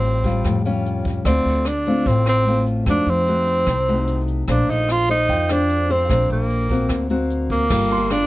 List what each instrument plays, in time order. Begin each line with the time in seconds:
Already playing: upright bass A1, nylon-string guitar A2 G3 F4, tenor saxophone C4
0.04 closed hi-hat
0.24 nylon-string guitar G3 F4, kick, closed hi-hat
0.44 upright bass F2, nylon-string guitar A2, kick, cross-stick, closed hi-hat
0.65 nylon-string guitar G3 C#4 F4, closed hi-hat
0.86 closed hi-hat
1.05 kick, closed hi-hat
1.25 upright bass D2, nylon-string guitar D3 A3 C4 F4, tenor saxophone C4, grand piano D5, kick, cross-stick, closed hi-hat
1.45 upright bass D2, closed hi-hat
1.65 tenor saxophone D4, cross-stick, closed hi-hat
1.86 nylon-string guitar A3 C4 F4, closed hi-hat
2.06 upright bass A1, nylon-string guitar A2, tenor saxophone C4, kick, closed hi-hat
2.26 tenor saxophone C4, cross-stick, closed hi-hat
2.46 nylon-string guitar A3 C4 F4, closed hi-hat
2.66 closed hi-hat
2.86 upright bass F2, nylon-string guitar F3 A3 D#4 F#4, tenor saxophone D4, kick, cross-stick, closed hi-hat
3.06 upright bass F2, tenor saxophone C4, closed hi-hat
3.26 nylon-string guitar A3 D#4 F#4, closed hi-hat
3.47 closed hi-hat
3.66 upright bass C2, nylon-string guitar C3, kick, cross-stick, closed hi-hat
3.87 nylon-string guitar A3 D#4 F#4, closed hi-hat
4.07 closed hi-hat
4.27 closed hi-hat
4.48 upright bass A#1, nylon-string guitar A#3 D4 A4 C5, tenor saxophone D4, kick, cross-stick, closed hi-hat
4.68 upright bass A#1, tenor saxophone D#4, closed hi-hat
4.89 tenor saxophone F4, cross-stick, closed hi-hat
5.09 tenor saxophone D#4, nylon-string guitar A4 C5, closed hi-hat
5.29 upright bass F2, nylon-string guitar F3, grand piano G5, kick, closed hi-hat
5.49 nylon-string guitar D4 A4 C5, tenor saxophone D4, cross-stick, closed hi-hat
5.69 closed hi-hat
5.89 tenor saxophone C4, nylon-string guitar D4 A4 C5, closed hi-hat
6.09 upright bass A#1, nylon-string guitar A#3 D4 A4 C5, kick, cross-stick, closed hi-hat
6.30 upright bass A#1, tenor saxophone A#3, closed hi-hat
6.50 closed hi-hat
6.69 nylon-string guitar A#3 C4 F#4, kick, closed hi-hat
6.89 upright bass D2, nylon-string guitar D3, kick, cross-stick, closed hi-hat
7.09 nylon-string guitar A#3 C4 F#4, closed hi-hat
7.30 closed hi-hat
7.50 tenor saxophone A#3, kick, closed hi-hat
7.70 upright bass G1, nylon-string guitar G3 A#3 F4 A4, kick, cross-stick, crash, shaker
7.90 grand piano C6, closed hi-hat, shaker
8.10 nylon-string guitar A#3 F4 A4, tenor saxophone D4, cross-stick, closed hi-hat